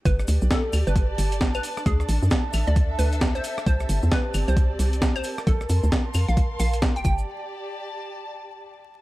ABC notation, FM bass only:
X:1
M:4/4
L:1/16
Q:"Swing 16ths" 1/4=133
K:Clyd
V:1 name="FM bass" clef=bass
G,,,2 D,, B,,, z2 D,, G,,,3 G,,,4 z2 | D,,2 A,,, F,, z2 A,,, D,,3 D,,4 z2 | C,,2 G,,, E,, z2 G,,, C,,3 C,,4 z2 | _B,,,2 =F,, D,, z2 F,, B,,,3 B,,,3 =F,,, G,,,2 |
z16 |]